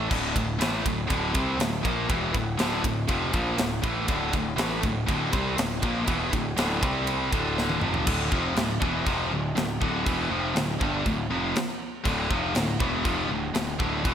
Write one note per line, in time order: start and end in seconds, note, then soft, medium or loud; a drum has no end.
0.09 0.33 D1 loud
0.09 0.33 D2 loud
0.09 0.34 A2 loud
0.09 0.34 D3 loud
0.09 kick loud
0.09 crash loud
0.34 0.58 D1 medium
0.34 0.54 D2 medium
0.34 0.55 A2 medium
0.34 kick medium
0.34 ride medium
0.58 0.83 A1 loud
0.58 0.83 A2 medium
0.58 0.83 E3 loud
0.58 0.84 A3 loud
0.58 snare loud
0.58 ride loud
0.84 1.08 D1 medium
0.84 1.04 D2 medium
0.84 1.04 A2 medium
0.84 kick medium
0.84 ride medium
1.07 1.33 D1 medium
1.07 1.33 D2 loud
1.07 1.33 A2 loud
1.07 1.33 D3 loud
1.07 kick loud
1.07 ride loud
1.33 1.58 C2 medium
1.33 1.57 C3 medium
1.33 1.57 G3 loud
1.33 1.58 C4 loud
1.33 kick loud
1.33 ride medium
1.58 1.83 D1 medium
1.58 1.78 D2 medium
1.58 1.78 A2 medium
1.58 snare loud
1.58 ride loud
1.83 2.08 A#1 loud
1.83 2.08 A#2 medium
1.83 2.08 F3 loud
1.83 2.08 A#3 loud
1.83 kick loud
1.83 ride medium
2.09 2.33 E1 loud
2.09 2.33 E2 loud
2.09 2.33 B2 loud
2.09 2.34 E3 loud
2.09 kick loud
2.09 ride loud
2.34 2.57 D1 medium
2.34 2.54 D2 medium
2.34 2.54 A2 medium
2.34 kick medium
2.34 ride medium
2.58 2.82 D1 loud
2.58 2.81 D2 medium
2.58 2.81 A2 loud
2.58 2.83 D3 loud
2.58 snare loud
2.58 ride loud
2.83 3.07 D1 medium
2.83 3.03 D2 medium
2.83 3.03 A2 medium
2.83 kick loud
2.83 ride medium
3.08 3.32 F1 medium
3.08 3.32 F2 loud
3.08 3.33 C3 loud
3.08 3.32 F3 loud
3.08 kick loud
3.08 ride medium
3.32 3.57 A#1 loud
3.32 3.57 A#2 medium
3.32 3.57 F3 loud
3.32 3.58 A#3 loud
3.32 kick loud
3.32 ride medium
3.58 3.82 D1 medium
3.58 3.78 D2 medium
3.58 3.78 A2 medium
3.58 snare loud
3.58 ride loud
3.82 4.07 A1 loud
3.82 4.06 A2 loud
3.82 4.07 E3 loud
3.82 4.07 A3 loud
3.82 kick loud
3.82 ride medium
4.07 4.32 D1 loud
4.07 4.31 D2 medium
4.07 4.31 A2 loud
4.07 4.32 D3 loud
4.07 kick loud
4.07 ride loud
4.32 4.57 D1 medium
4.32 4.53 D2 medium
4.32 4.53 A2 medium
4.32 kick medium
4.32 ride medium
4.56 4.81 A1 loud
4.56 4.81 A2 medium
4.56 4.82 E3 loud
4.56 4.82 A3 loud
4.56 snare loud
4.56 ride loud
4.82 5.07 D1 medium
4.82 5.02 D2 medium
4.82 5.03 A2 medium
4.82 kick loud
4.82 ride medium
5.06 5.32 D1 medium
5.06 5.31 D2 loud
5.06 5.32 A2 loud
5.06 5.32 D3 loud
5.06 kick loud
5.06 ride loud
5.31 5.56 C2 loud
5.31 5.56 C3 medium
5.31 5.57 G3 medium
5.31 5.57 C4 loud
5.31 kick loud
5.31 ride medium
5.57 5.81 D1 medium
5.57 5.77 D2 medium
5.57 5.78 A2 medium
5.57 snare loud
5.57 ride loud
5.82 6.06 A#1 medium
5.82 6.06 A#2 medium
5.82 6.06 F3 medium
5.82 6.06 A#3 loud
5.82 kick loud
5.82 ride medium
6.06 6.31 E1 medium
6.06 6.31 E2 loud
6.06 6.31 B2 loud
6.06 6.31 E3 loud
6.06 kick loud
6.06 ride loud
6.32 6.56 D1 medium
6.32 6.52 D2 medium
6.32 6.52 A2 medium
6.32 kick medium
6.32 ride medium
6.57 6.80 D1 loud
6.57 6.81 D2 medium
6.57 6.83 A2 loud
6.57 6.82 D3 loud
6.57 snare loud
6.57 ride loud
6.81 7.29 C2 loud
6.81 7.31 C3 medium
6.81 7.32 G3 loud
6.81 7.31 C4 loud
6.81 kick loud
6.81 ride medium
7.07 ride medium
7.32 7.79 D1 medium
7.32 7.81 D2 medium
7.32 7.81 A2 medium
7.32 7.82 D3 loud
7.32 kick loud
7.32 ride medium
7.58 snare medium
7.70 high tom medium
7.81 8.05 F1 medium
7.81 8.05 F2 medium
7.81 8.06 C3 loud
7.81 8.06 F3 loud
7.81 mid tom medium
7.94 floor tom loud
8.05 8.30 D1 medium
8.05 8.30 D2 medium
8.05 8.31 A2 loud
8.05 8.31 D3 loud
8.05 kick loud
8.05 crash loud
8.05 crash medium
8.31 8.55 F1 medium
8.31 8.55 F2 medium
8.31 8.55 C3 medium
8.31 8.56 F3 loud
8.31 kick loud
8.55 8.80 D1 medium
8.55 8.76 D2 medium
8.55 8.76 A2 medium
8.55 snare loud
8.55 crash medium
8.80 9.05 E1 loud
8.80 9.05 E2 medium
8.80 9.05 B2 loud
8.80 9.06 E3 medium
8.80 kick loud
9.06 9.30 F1 medium
9.06 9.30 F2 medium
9.06 9.31 C3 loud
9.06 9.31 F3 loud
9.06 kick loud
9.06 crash medium
9.31 9.54 D1 medium
9.31 9.51 D2 medium
9.31 9.51 A2 medium
9.55 9.79 D1 medium
9.55 9.76 D2 medium
9.55 9.76 A2 medium
9.55 snare loud
9.55 crash medium
9.81 10.05 D1 medium
9.81 10.05 D2 medium
9.81 10.06 A2 loud
9.81 10.06 D3 medium
9.81 kick medium
10.05 10.29 E1 loud
10.05 10.30 E2 loud
10.05 10.30 B2 loud
10.05 10.31 E3 loud
10.05 kick loud
10.05 crash medium
10.30 10.54 F1 loud
10.30 10.55 F2 medium
10.30 10.55 C3 medium
10.30 10.55 F3 medium
10.55 10.79 D1 medium
10.55 10.76 D2 medium
10.55 10.76 A2 medium
10.55 snare loud
10.55 crash medium
10.80 11.04 G1 medium
10.80 11.05 G2 loud
10.80 11.05 D3 medium
10.80 11.05 G3 loud
10.80 kick loud
11.06 11.29 D1 medium
11.06 11.26 D2 medium
11.06 11.26 A2 medium
11.06 kick medium
11.06 crash medium
11.29 11.53 F1 loud
11.29 11.54 F2 medium
11.29 11.55 C3 loud
11.29 11.55 F3 loud
11.56 snare loud
11.56 crash medium
12.04 12.28 D1 medium
12.04 12.28 D2 loud
12.04 12.29 A2 loud
12.04 12.29 D3 loud
12.04 kick loud
12.04 crash medium
12.29 12.53 F1 loud
12.29 12.53 F2 medium
12.29 12.54 C3 medium
12.29 12.54 F3 loud
12.29 kick loud
12.55 12.78 D1 medium
12.55 12.75 D2 medium
12.55 12.75 A2 medium
12.55 snare loud
12.55 crash medium
12.79 13.03 E1 loud
12.79 13.04 E2 loud
12.79 13.04 B2 loud
12.79 13.04 E3 medium
12.79 kick loud
13.04 13.28 F1 medium
13.04 13.28 F2 loud
13.04 13.29 C3 loud
13.04 13.29 F3 loud
13.04 kick loud
13.04 crash medium
13.29 13.52 D1 medium
13.29 13.49 D2 medium
13.29 13.49 A2 medium
13.54 13.77 D1 medium
13.54 13.74 D2 medium
13.54 13.74 A2 medium
13.54 snare loud
13.54 crash medium
13.79 14.02 D1 medium
13.79 14.03 D2 loud
13.79 14.03 A2 medium
13.79 14.04 D3 loud
13.79 kick loud
14.03 14.14 E1 medium
14.03 14.14 E2 loud
14.03 14.14 B2 loud
14.03 14.14 E3 loud
14.03 kick loud
14.03 crash medium